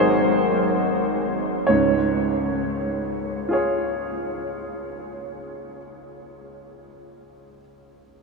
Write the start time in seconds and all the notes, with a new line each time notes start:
Already playing: G#1 F#3 G#3 D#4 G#4 C5
1.67 C#2 G#2 C#5
3.49 F4 G#4
3.53 C#5